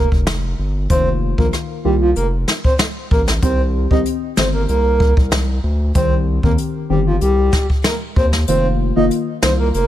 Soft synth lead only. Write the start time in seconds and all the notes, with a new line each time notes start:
0.90 C5
1.38 A#4
1.84 G4
2.02 F4
2.16 A#4
2.64 C5
3.11 A#4
3.42 C5
3.91 D#5
4.37 C5
4.54 A#4
4.69 A#4
5.95 C5
6.43 A#4
6.90 G4
7.07 F4
7.21 G4
7.85 A#4
8.16 C5
8.48 C5
8.96 D#5
9.42 C5
9.59 A#4
9.74 A#4